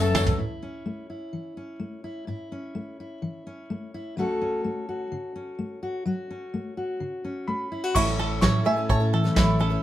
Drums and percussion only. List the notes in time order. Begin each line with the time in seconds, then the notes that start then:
0.15 mid tom, tambourine
0.26 floor tom
7.95 kick, crash
8.07 snare
8.42 kick, snare, closed hi-hat
8.89 kick, closed hi-hat
9.25 snare
9.36 kick, snare, closed hi-hat